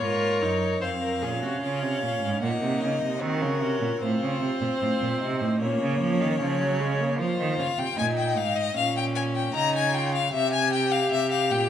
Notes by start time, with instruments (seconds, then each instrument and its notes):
Already playing: violin C#5
0.01 cello G#2, viola F4, violin A#4
0.42 cello F#2, viola D#4
0.81 cello F2, viola C4, violin C5 F5
1.01 violin A#4
1.22 cello A#2, viola C#4, violin G#4
1.42 cello C3, violin F#4
1.62 cello C#3, violin F4 F5
1.82 cello C3
2.02 cello A#2, violin C#4
2.22 cello G#2
2.42 cello A#2, viola A#3, violin D#4 F#5
2.62 cello C3
2.81 cello C#3, violin D#5
3.02 cello C3
3.22 cello D#3, viola C4, violin F#4 A#4
3.42 cello C#3
3.62 cello C3, viola C#4
3.81 cello A#2
4.01 cello A2, viola C4, violin F4 C5
4.21 cello C#3
4.41 cello C3
4.61 cello A#2
4.81 cello A2, violin F4
5.01 cello A#2
5.20 cello C3, violin D#4
5.41 cello A2
5.60 cello A#2, viola A#3, violin C#4 C#5
5.81 cello C#3
6.01 cello F3
6.21 cello D#3
6.40 cello C#3, viola F3
6.60 viola F#3
6.81 viola G#3
7.00 viola A#3
7.19 cello F3, violin F4 C5
7.39 cello D#3
7.59 cello C#3, violin F5
7.78 cello C3, violin G5
7.97 cello A#2, violin D#4 G#5
8.18 violin G5
8.37 cello G#2, violin F5
8.56 violin D#5
8.75 cello A#2, violin C#4 F5
8.97 violin G5
9.15 violin G#5
9.35 violin G5
9.54 cello C#3, violin D#4 A#5
9.75 violin G#5
9.93 violin F4 G5
10.14 violin F5
10.33 cello C3, violin G4 E5
10.52 violin G#5
10.73 violin G5
10.91 violin F5
11.12 cello C3, violin E5
11.31 violin F5
11.51 cello A#2, violin G5